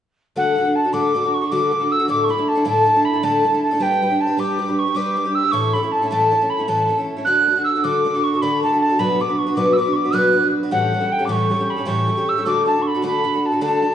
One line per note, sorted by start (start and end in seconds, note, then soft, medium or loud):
0.36 0.57 D3 medium
0.36 0.54 A3 medium
0.36 0.55 D4 medium
0.36 0.56 F#4 medium
0.36 0.57 A4 medium
0.36 0.77 F#5 medium
0.56 0.65 A3 medium
0.56 0.66 D4 soft
0.56 0.65 F#4 medium
0.56 0.64 A4 medium
0.65 0.85 D4 soft
0.65 0.84 F#4 soft
0.65 0.83 A4 soft
0.75 0.94 A5 medium
0.84 0.92 D4 soft
0.84 0.92 F#4 soft
0.84 0.93 A4 soft
0.93 1.14 D3 medium
0.93 1.13 A3 medium
0.93 1.14 D4 medium
0.93 1.14 F#4 medium
0.93 1.14 A4 medium
0.93 1.35 D6 medium
1.14 1.23 A3 medium
1.14 1.24 D4 medium
1.14 1.24 F#4 medium
1.14 1.23 A4 medium
1.24 1.42 D4 soft
1.24 1.42 F#4 soft
1.24 1.40 A4 soft
1.34 1.53 C#6 medium
1.41 1.51 D4 soft
1.41 1.51 F#4 soft
1.41 1.51 A4 soft
1.51 1.72 D3 medium
1.51 1.70 A3 medium
1.51 1.70 D4 medium
1.51 1.71 F#4 medium
1.51 1.72 A4 medium
1.51 1.93 D6 medium
1.71 1.81 A3 soft
1.71 1.81 D4 soft
1.71 1.80 F#4 soft
1.71 1.79 A4 soft
1.80 2.00 D4 soft
1.80 1.99 F#4 soft
1.80 1.98 A4 soft
1.91 2.08 E6 medium
1.99 2.08 D4 soft
1.99 2.09 F#4 soft
1.99 2.08 A4 soft
2.08 2.29 A2 medium
2.08 2.29 D3 medium
2.08 2.27 A3 medium
2.08 2.27 D4 medium
2.08 2.28 E4 medium
2.08 2.29 A4 medium
2.08 2.25 D6 loud
2.24 2.32 C#6 medium
2.28 2.38 A3 medium
2.28 2.38 D4 soft
2.28 2.37 E4 medium
2.28 2.37 A4 medium
2.28 2.50 B5 medium
2.38 2.56 A3 soft
2.38 2.56 D4 soft
2.38 2.55 E4 soft
2.38 2.54 A4 soft
2.48 2.66 A5 medium
2.55 2.64 A3 soft
2.55 2.64 D4 soft
2.55 2.65 E4 medium
2.55 2.65 A4 medium
2.65 2.86 A2 medium
2.65 2.86 D3 medium
2.65 2.83 A3 medium
2.65 2.84 D4 medium
2.65 2.85 E4 medium
2.65 2.85 A4 medium
2.65 3.06 A5 medium
2.85 2.95 A3 medium
2.85 2.95 D4 medium
2.85 2.93 A4 medium
2.95 3.14 A3 soft
2.95 3.13 D4 soft
2.95 3.12 E4 soft
2.95 3.12 A4 medium
3.05 3.25 B5 medium
3.13 3.22 A3 soft
3.13 3.22 D4 soft
3.13 3.22 E4 soft
3.13 3.23 A4 soft
3.23 3.44 A2 medium
3.23 3.44 D3 medium
3.23 3.43 A3 medium
3.23 3.43 D4 medium
3.23 3.44 E4 medium
3.23 3.45 A4 medium
3.23 3.62 A5 medium
3.44 3.53 A3 soft
3.44 3.53 D4 medium
3.44 3.53 A4 medium
3.54 3.72 A3 soft
3.54 3.71 D4 soft
3.54 3.71 E4 soft
3.54 3.70 A4 soft
3.62 3.84 A5 medium
3.71 3.79 A3 soft
3.71 3.79 D4 soft
3.71 3.80 E4 soft
3.71 3.80 A4 medium
3.80 4.00 G3 medium
3.80 4.01 D4 medium
3.80 4.01 G4 medium
3.80 4.02 B4 medium
3.80 4.22 G5 loud
4.01 4.11 G3 soft
4.01 4.10 D4 medium
4.01 4.09 G4 soft
4.01 4.08 B4 medium
4.09 4.28 D4 soft
4.09 4.28 G4 soft
4.09 4.26 B4 soft
4.20 4.41 A5 medium
4.27 4.37 D4 soft
4.27 4.37 G4 soft
4.27 4.37 B4 medium
4.37 4.57 G3 medium
4.37 4.57 D4 medium
4.37 4.58 G4 medium
4.37 4.59 B4 medium
4.37 4.80 D6 medium
4.58 4.68 G3 medium
4.58 4.68 D4 medium
4.58 4.68 G4 medium
4.58 4.67 B4 medium
4.68 4.87 D4 soft
4.68 4.87 G4 soft
4.68 4.85 B4 medium
4.79 4.97 C#6 medium
4.86 4.95 D4 soft
4.86 4.95 G4 soft
4.86 4.96 B4 soft
4.95 5.15 G3 medium
4.95 5.15 D4 medium
4.95 5.16 G4 medium
4.95 5.16 B4 medium
4.95 5.36 D6 medium
5.16 5.25 G3 soft
5.16 5.26 D4 soft
5.16 5.24 G4 medium
5.16 5.23 B4 soft
5.24 5.44 D4 soft
5.24 5.43 G4 soft
5.24 5.41 B4 soft
5.35 5.53 E6 medium
5.43 5.52 D4 soft
5.43 5.53 G4 soft
5.43 5.52 B4 soft
5.51 5.74 A2 medium
5.51 5.74 E3 medium
5.51 5.73 A3 medium
5.51 5.74 C#4 medium
5.51 5.74 E4 medium
5.51 5.74 A4 medium
5.51 5.75 C#6 loud
5.73 5.83 A3 soft
5.73 5.83 C#4 soft
5.73 5.83 E4 soft
5.73 5.82 A4 medium
5.73 5.93 B5 medium
5.83 6.02 A3 soft
5.83 6.02 C#4 soft
5.83 6.02 E4 soft
5.83 6.01 A4 soft
5.92 6.09 A5 medium
6.02 6.11 A3 soft
6.02 6.11 C#4 soft
6.02 6.11 E4 soft
6.02 6.11 A4 soft
6.10 6.32 A2 medium
6.10 6.32 E3 medium
6.10 6.30 A3 medium
6.10 6.30 C#4 medium
6.10 6.31 E4 medium
6.10 6.31 A4 medium
6.10 6.51 A5 medium
6.31 6.41 A3 soft
6.31 6.41 C#4 soft
6.31 6.40 E4 medium
6.31 6.40 A4 medium
6.41 6.59 A3 soft
6.41 6.58 C#4 soft
6.41 6.58 E4 soft
6.41 6.57 A4 soft
6.50 6.61 B5 medium
6.58 6.67 A3 soft
6.58 6.67 C#4 soft
6.58 6.67 E4 soft
6.58 6.68 A4 soft
6.58 6.70 B5 medium
6.68 6.89 A2 medium
6.68 6.89 E3 medium
6.68 6.87 A3 medium
6.68 6.88 C#4 medium
6.68 6.88 E4 medium
6.68 6.89 A4 medium
6.68 6.99 A5 medium
6.89 6.98 A3 soft
6.89 6.98 C#4 soft
6.89 6.98 E4 soft
6.89 6.97 A4 soft
6.98 7.17 A3 soft
6.98 7.17 C#4 soft
6.98 7.16 E4 soft
6.98 7.15 A4 soft
7.16 7.26 A3 soft
7.16 7.27 C#4 soft
7.16 7.26 E4 soft
7.16 7.26 A4 soft
7.25 7.47 D3 medium
7.25 7.46 A3 medium
7.25 7.47 D4 medium
7.25 7.47 F#4 medium
7.25 7.48 A4 medium
7.25 7.62 F#6 loud
7.47 7.56 A3 soft
7.47 7.57 D4 medium
7.47 7.56 F#4 soft
7.47 7.54 A4 soft
7.55 7.76 D4 soft
7.55 7.75 F#4 soft
7.55 7.74 A4 soft
7.64 7.85 E6 medium
7.76 7.83 D4 soft
7.76 7.84 F#4 soft
7.76 7.84 A4 soft
7.84 8.05 D3 medium
7.84 8.04 A3 medium
7.84 8.05 D4 medium
7.84 8.05 F#4 medium
7.84 8.06 A4 medium
7.84 8.25 D6 medium
8.05 8.14 A3 medium
8.05 8.15 D4 soft
8.05 8.15 F#4 soft
8.05 8.13 A4 medium
8.14 8.34 D4 soft
8.14 8.33 F#4 soft
8.14 8.33 A4 medium
8.23 8.43 C#6 medium
8.34 8.42 D4 soft
8.34 8.42 F#4 soft
8.34 8.42 A4 soft
8.41 8.63 D3 medium
8.41 8.62 A3 medium
8.41 8.62 D4 medium
8.41 8.63 F#4 medium
8.41 8.64 A4 medium
8.41 8.62 B5 medium
8.63 8.72 A3 soft
8.63 8.72 D4 soft
8.63 8.72 F#4 soft
8.63 8.71 A4 medium
8.63 8.80 A5 medium
8.73 8.90 D4 soft
8.73 8.89 F#4 soft
8.73 8.88 A4 soft
8.81 9.00 A5 medium
8.89 8.98 D4 soft
8.89 8.98 F#4 medium
8.89 8.99 A4 medium
8.99 9.20 B2 medium
8.99 9.20 F#3 medium
8.99 9.18 B3 medium
8.99 9.19 D4 medium
8.99 9.20 F#4 medium
8.99 9.20 B4 medium
8.99 9.22 B5 medium
9.19 9.29 B3 soft
9.19 9.28 D4 medium
9.19 9.28 F#4 medium
9.19 9.27 B4 soft
9.19 9.40 D6 medium
9.29 9.47 B3 soft
9.29 9.47 D4 soft
9.29 9.47 F#4 soft
9.29 9.45 B4 soft
9.38 9.56 C#6 medium
9.47 9.56 B3 soft
9.47 9.56 D4 soft
9.47 9.56 F#4 soft
9.47 9.56 B4 medium
9.56 9.78 B2 medium
9.56 9.78 F#3 medium
9.56 9.77 B3 medium
9.56 9.77 D4 medium
9.56 9.78 F#4 medium
9.56 9.78 B4 medium
9.56 9.74 D6 medium
9.73 9.94 D6 medium
9.73 9.78 E6 medium
9.78 9.87 B3 medium
9.78 9.87 D4 medium
9.78 9.86 F#4 medium
9.78 9.86 B4 medium
9.87 10.04 B3 soft
9.87 10.05 D4 soft
9.87 10.04 F#4 soft
9.87 10.03 B4 soft
9.93 9.97 C#6 medium
9.93 10.16 D6 medium
10.04 10.13 B3 soft
10.04 10.12 D4 soft
10.04 10.12 F#4 soft
10.04 10.13 B4 soft
10.12 10.35 B2 medium
10.12 10.35 F#3 medium
10.12 10.31 B3 medium
10.12 10.33 D4 medium
10.12 10.34 F#4 medium
10.12 10.34 B4 medium
10.12 10.46 F#6 medium
10.33 10.44 B3 soft
10.33 10.43 D4 medium
10.33 10.42 F#4 medium
10.33 10.42 B4 soft
10.43 10.63 B3 soft
10.43 10.63 D4 soft
10.43 10.62 F#4 soft
10.43 10.62 B4 medium
10.63 10.71 B3 soft
10.63 10.72 D4 soft
10.63 10.72 F#4 soft
10.63 10.72 B4 medium
10.71 10.93 A2 medium
10.71 10.93 E3 medium
10.71 10.91 G3 medium
10.71 10.93 C#4 medium
10.71 10.93 G4 medium
10.71 10.93 A4 medium
10.71 11.13 F#5 loud
10.93 11.01 G3 soft
10.93 11.00 C#4 soft
10.93 10.99 G4 soft
10.93 10.99 A4 medium
11.01 11.20 G3 soft
11.01 11.19 C#4 soft
11.01 11.18 G4 soft
11.01 11.18 A4 soft
11.12 11.26 G5 medium
11.19 11.28 G3 soft
11.19 11.28 C#4 soft
11.19 11.28 G4 soft
11.19 11.28 A4 medium
11.25 11.50 A2 medium
11.25 11.51 E3 medium
11.25 11.33 D6 medium
11.29 11.48 G3 medium
11.29 11.49 C#4 medium
11.29 11.49 G4 medium
11.29 11.50 A4 medium
11.29 11.71 C#6 medium
11.49 11.60 G3 medium
11.49 11.59 C#4 medium
11.49 11.59 G4 medium
11.49 11.58 A4 medium
11.59 11.78 G3 soft
11.59 11.78 C#4 soft
11.59 11.77 G4 soft
11.59 11.76 A4 soft
11.70 11.89 B5 medium
11.77 11.85 G3 soft
11.77 11.85 C#4 soft
11.77 11.85 G4 soft
11.77 11.86 A4 soft
11.85 12.08 A2 medium
11.85 12.09 E3 medium
11.85 12.06 G3 medium
11.85 12.07 C#4 medium
11.85 12.08 G4 medium
11.85 12.08 A4 medium
11.85 12.30 C#6 medium
12.07 12.17 G3 soft
12.07 12.17 C#4 soft
12.07 12.16 G4 soft
12.07 12.16 A4 soft
12.17 12.38 G3 soft
12.17 12.37 C#4 soft
12.17 12.37 G4 soft
12.17 12.36 A4 medium
12.29 12.46 E6 medium
12.37 12.45 G3 soft
12.37 12.46 C#4 soft
12.37 12.46 G4 medium
12.37 12.45 A4 soft
12.45 12.67 D3 medium
12.45 12.64 A3 medium
12.45 12.65 D4 medium
12.45 12.65 F#4 medium
12.45 12.66 A4 medium
12.45 12.66 D6 medium
12.65 12.76 A3 soft
12.65 12.76 D4 medium
12.65 12.76 F#4 medium
12.65 12.74 A4 soft
12.65 12.83 A5 medium
12.76 12.95 D4 soft
12.76 12.94 F#4 soft
12.76 12.93 A4 soft
12.82 12.88 C#6 soft
12.87 13.05 B5 medium
12.94 13.02 D4 soft
12.94 13.02 F#4 medium
12.94 13.03 A4 medium
13.02 13.25 D3 medium
13.02 13.23 A3 medium
13.02 13.23 D4 medium
13.02 13.23 F#4 medium
13.02 13.24 A4 medium
13.07 13.47 B5 medium
13.24 13.34 A3 medium
13.24 13.34 D4 medium
13.24 13.33 F#4 medium
13.24 13.32 A4 medium
13.33 13.53 D4 soft
13.33 13.52 F#4 soft
13.33 13.51 A4 soft
13.46 13.63 A5 medium
13.52 13.60 D4 soft
13.52 13.61 F#4 soft
13.52 13.60 A4 soft
13.61 13.83 D3 medium
13.61 13.81 A3 medium
13.61 13.82 D4 medium
13.61 13.82 F#4 medium
13.61 13.83 A4 medium
13.61 13.95 A5 medium
13.82 13.92 A3 soft
13.82 13.93 D4 soft
13.82 13.92 F#4 soft
13.82 13.91 A4 soft